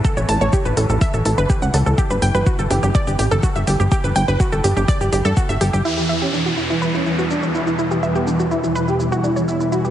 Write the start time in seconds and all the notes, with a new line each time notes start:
Already playing: E2 E3
0.05 A4, kick, shaker
0.17 A1 C#5, shaker
0.29 A1 A5, open hi-hat, shaker
0.41 A1 C#5, shaker
0.53 G4, kick, shaker
0.65 A1 B4, shaker
0.77 A1 A4, open hi-hat, shaker
0.89 A1 A4, shaker
1.01 E5, kick, open hi-hat, shaker
1.14 A1 A4, shaker
1.25 A1 A4, open hi-hat, shaker
1.38 G1 B4, shaker
1.50 G4, kick, shaker
1.62 C#2 F#5, shaker
1.74 C#2 A4, open hi-hat, shaker
1.86 C#2 A4, shaker
1.98 G4, kick, shaker
2.10 G1 B4, shaker
2.22 G1 G5, open hi-hat, shaker
2.35 G1 B4, shaker
2.46 F#4, kick, shaker
2.59 G1 A4, shaker
2.70 G1 G4, open hi-hat, shaker
2.83 G1 G4, shaker
2.95 D5, kick, shaker
3.07 G1 G4, shaker
3.19 A1 G4, open hi-hat, shaker
3.31 G1 A4, shaker
3.43 F#4, kick, shaker
3.56 G1 E5, shaker
3.67 G1 G4, open hi-hat, shaker
3.80 G1 G4, shaker
3.91 G4, kick, shaker
4.04 G1 B4, shaker
4.16 G1 G5, open hi-hat, shaker
4.28 G1 B4, shaker
4.40 F#4, kick, shaker
4.52 G1 A4, shaker
4.64 G1 G4, open hi-hat, shaker
4.77 G1 G4, shaker
4.88 D5, kick, open hi-hat, shaker
5.01 G1 G4, shaker
5.12 G1 G4, open hi-hat, shaker
5.25 G2 A4, shaker
5.37 F#4, kick, shaker
5.49 G1 E5, shaker
5.61 G1 G4, open hi-hat, shaker
5.73 G1 G4, shaker
5.85 E2 B2 E3 G3 E4, crash, downlifter, shaker
5.97 E3 G4, shaker
6.09 E3 E5, shaker
6.22 C#4 G4, shaker
6.33 E3 D4, shaker
6.46 E3 F#4, shaker
6.58 E4, shaker
6.70 E3 E4, shaker
6.82 E3 B4, shaker
6.94 C#4 E4, shaker
7.06 E3 E4, shaker
7.19 E3 F#4, shaker
7.30 D4, shaker
7.43 E3 C#5, shaker
7.55 E4, shaker
7.67 E3 E4, shaker
7.79 E4, shaker
7.91 E3 G4, shaker
8.03 E3 E5, shaker
8.15 B3 G4, shaker
8.27 E3 D4, shaker
8.40 E3 F#4, shaker
8.51 E4, shaker
8.64 E3 E4, shaker
8.75 E3 B4, shaker
8.88 E4 G4, shaker
9.00 E3 E4, shaker
9.12 E3 F#4, shaker
9.24 D4 E4, shaker
9.36 E3 C#5, shaker
9.48 E4, shaker
9.60 E3 E4, shaker
9.72 E4 F#4, shaker
9.85 B3 G4, shaker